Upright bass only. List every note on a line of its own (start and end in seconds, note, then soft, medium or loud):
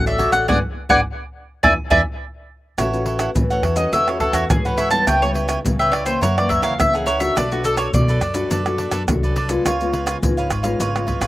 0.00 0.28 A1 medium
0.32 0.45 A1 medium
0.49 0.59 G#1 medium
0.90 1.01 G#1 medium
1.64 1.74 E2 medium
1.91 2.02 E2 medium
2.78 3.27 A1 medium
3.35 3.60 A2 medium
3.63 3.88 E2 medium
3.92 4.29 E2 medium
4.33 4.46 E2 medium
4.50 4.98 G#2 medium
5.07 5.56 C#2 medium
5.65 5.89 C#3 medium
5.92 6.17 C#2 medium
6.22 6.58 F#2 medium
6.62 6.76 C#2 medium
6.79 7.27 C#2 medium
7.36 7.85 B1 medium
7.93 8.18 B2 medium
8.21 8.46 F#2 medium
8.51 8.88 F#2 medium
8.91 9.05 F#2 medium
9.08 9.57 C2 medium
9.65 10.14 C#2 medium
10.22 10.47 C#3 medium
10.50 10.75 G#1 medium
10.80 11.16 G#1 medium
11.20 11.27 G#1 medium